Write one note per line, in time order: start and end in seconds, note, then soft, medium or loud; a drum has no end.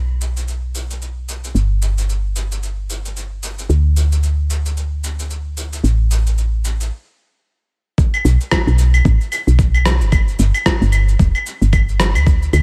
0.00 1.53 B1 medium
0.21 shaker medium
0.37 shaker soft
0.48 shaker soft
0.75 shaker medium
0.90 shaker soft
1.02 shaker soft
1.29 shaker medium
1.44 shaker soft
1.55 3.67 G1 medium
1.55 shaker soft
1.82 shaker medium
1.98 shaker soft
2.09 shaker soft
2.36 shaker medium
2.52 shaker soft
2.63 shaker soft
2.90 shaker medium
3.05 shaker soft
3.16 shaker soft
3.43 shaker medium
3.59 shaker soft
3.69 5.82 D2 medium
3.69 shaker soft
3.97 shaker medium
4.12 shaker soft
4.23 shaker soft
4.50 shaker medium
4.66 shaker soft
4.77 shaker soft
5.04 shaker medium
5.19 shaker soft
5.30 shaker soft
5.57 shaker medium
5.73 shaker soft
5.84 6.91 A1 medium
5.84 shaker soft
6.11 shaker medium
6.27 shaker soft
6.38 shaker soft
6.65 shaker medium
6.80 shaker soft
7.98 kick loud
7.98 shaker soft
8.14 claves medium
8.14 shaker soft
8.25 8.37 B1 loud
8.25 shaker medium
8.40 shaker soft
8.51 kick loud
8.51 cross-stick medium
8.51 claves medium
8.51 shaker soft
8.67 9.01 B1 loud
8.67 shaker soft
8.78 shaker medium
8.94 claves medium
8.94 shaker soft
9.05 9.17 A1 loud
9.05 kick loud
9.05 shaker soft
9.21 shaker soft
9.32 claves medium
9.32 shaker medium
9.47 10.02 B1 medium
9.47 shaker soft
9.59 kick loud
9.59 shaker soft
9.74 claves medium
9.74 shaker soft
9.85 cross-stick medium
9.85 shaker medium
10.01 10.35 G1 loud
10.01 shaker soft
10.12 kick loud
10.12 claves medium
10.12 shaker soft
10.28 shaker soft
10.39 10.51 G1 loud
10.39 shaker medium
10.54 claves medium
10.54 shaker soft
10.66 kick loud
10.66 cross-stick medium
10.66 shaker soft
10.81 11.16 G1 loud
10.81 shaker soft
10.92 claves medium
10.92 shaker medium
11.08 shaker soft
11.19 11.32 E1 loud
11.19 kick loud
11.19 shaker soft
11.35 claves medium
11.35 shaker soft
11.46 shaker medium
11.62 12.17 G1 medium
11.62 shaker soft
11.73 kick loud
11.73 claves medium
11.73 shaker soft
11.89 shaker soft
12.00 cross-stick medium
12.00 shaker medium
12.15 12.50 D2 medium
12.15 claves medium
12.15 shaker soft
12.27 kick loud
12.27 shaker soft
12.42 shaker soft
12.53 12.62 D2 loud
12.53 claves medium
12.53 shaker medium